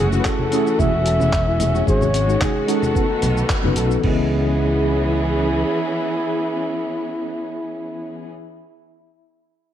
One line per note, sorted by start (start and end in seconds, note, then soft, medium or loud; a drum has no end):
0.00 0.18 F#1 loud
0.00 1.85 E3 medium
0.00 1.83 A3 medium
0.00 2.92 C#4 medium
0.00 1.83 F#4 medium
0.10 0.48 A3 medium
0.10 0.48 C#4 medium
0.10 0.49 E4 medium
0.10 0.19 F#4 loud
0.10 0.49 F#4 medium
0.10 0.50 G#4 loud
0.10 cabasa soft
0.19 0.27 B4 medium
0.25 0.38 A4 medium
0.25 0.81 A4 loud
0.25 kick medium
0.25 clap medium
0.25 cabasa soft
0.39 low conga medium
0.51 0.75 A3 loud
0.51 0.76 C#4 medium
0.51 0.65 C#4 medium
0.51 0.76 E4 medium
0.51 0.77 F#4 loud
0.51 0.77 G#4 loud
0.51 closed hi-hat medium
0.51 cabasa medium
0.66 0.73 E4 medium
0.66 cabasa soft
0.77 1.81 E1 medium
0.77 0.90 A3 medium
0.77 0.91 C#4 medium
0.77 0.91 E4 medium
0.77 0.91 F#4 medium
0.77 0.92 G#4 loud
0.77 1.87 E5 loud
0.77 kick loud
0.77 low conga medium
0.77 cabasa soft
0.93 1.00 F#4 loud
1.06 1.19 A4 medium
1.06 closed hi-hat medium
1.06 cabasa medium
1.19 1.30 A3 medium
1.19 1.31 C#4 medium
1.19 1.31 E4 medium
1.19 1.32 F#4 medium
1.19 1.32 G#4 loud
1.19 low conga medium
1.19 cabasa soft
1.33 1.46 C#4 medium
1.33 kick loud
1.33 clap loud
1.33 cabasa soft
1.47 1.54 E4 medium
1.59 1.84 A3 medium
1.59 1.84 C#4 medium
1.59 1.84 E4 medium
1.59 1.85 F#4 medium
1.59 1.85 G#4 medium
1.59 closed hi-hat medium
1.59 low conga medium
1.59 cabasa medium
1.74 1.81 F#4 loud
1.74 cabasa soft
1.86 2.35 G#1 loud
1.86 4.01 D#3 medium
1.86 2.05 G#3 medium
1.86 2.94 G#3 medium
1.86 2.06 C#4 medium
1.86 2.06 D#4 medium
1.86 4.02 F#4 medium
1.86 2.06 F#4 medium
1.86 2.00 G#4 medium
1.86 2.07 G#4 loud
1.86 2.38 C#5 loud
1.86 kick loud
1.86 cabasa soft
2.01 low conga medium
2.01 cabasa soft
2.14 2.27 C#4 medium
2.14 closed hi-hat medium
2.14 cabasa medium
2.27 2.65 G#3 medium
2.27 2.65 C#4 medium
2.27 2.35 D#4 medium
2.27 2.65 D#4 medium
2.27 2.66 F#4 medium
2.27 2.66 G#4 loud
2.27 cabasa soft
2.41 2.71 G#4 medium
2.41 kick medium
2.41 clap loud
2.41 low conga medium
2.41 cabasa soft
2.55 2.62 F#4 loud
2.67 2.91 G#3 loud
2.67 2.92 C#4 medium
2.67 2.92 D#4 loud
2.67 2.93 F#4 medium
2.67 2.81 G#4 medium
2.67 2.93 G#4 loud
2.67 3.50 A4 medium
2.67 closed hi-hat medium
2.67 cabasa medium
2.82 low conga medium
2.82 cabasa soft
2.94 4.02 A3 medium
2.94 3.07 B3 medium
2.94 4.02 B3 medium
2.94 3.08 B3 medium
2.94 3.07 C#4 medium
2.94 3.07 D#4 medium
2.94 3.08 F#4 medium
2.94 3.08 A4 medium
2.94 kick loud
2.94 cabasa soft
3.09 3.16 D#4 medium
3.22 3.41 B1 medium
3.22 3.30 B4 medium
3.22 closed hi-hat medium
3.22 low conga medium
3.22 cabasa medium
3.37 3.48 A4 medium
3.37 cabasa soft
3.49 kick loud
3.49 clap loud
3.49 cabasa soft
3.62 3.72 F#1 loud
3.62 4.00 B3 loud
3.62 4.00 C#4 medium
3.62 4.01 D#4 medium
3.62 4.01 F#4 medium
3.62 3.70 B4 medium
3.62 4.01 B4 loud
3.62 low conga medium
3.76 3.95 B1 loud
3.76 3.89 A4 loud
3.76 closed hi-hat loud
3.76 cabasa medium
3.91 cabasa soft
3.99 8.23 E3 medium
3.99 8.26 B3 medium
4.03 5.62 C#2 loud
4.03 8.29 E3 medium
4.03 4.29 B3 medium
4.03 8.29 B3 medium
4.03 8.29 C#4 medium
4.03 8.29 E4 medium
4.03 8.29 G#4 medium
4.03 8.31 D#5 medium
4.03 kick loud
4.03 crash medium
4.08 8.33 G#4 loud